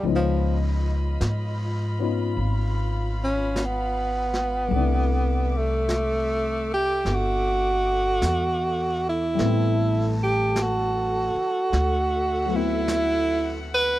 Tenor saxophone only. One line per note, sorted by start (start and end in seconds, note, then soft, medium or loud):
0.15 0.59 F3 medium
3.24 3.67 C#4 medium
3.65 5.58 B3 medium
5.57 6.71 A3 medium
6.74 7.16 G4 medium
7.15 9.06 F#4 medium
9.09 10.18 E4 medium
10.23 10.64 G4 medium
10.62 12.57 F#4 medium
12.56 13.57 E4 medium
13.74 13.99 B4 loud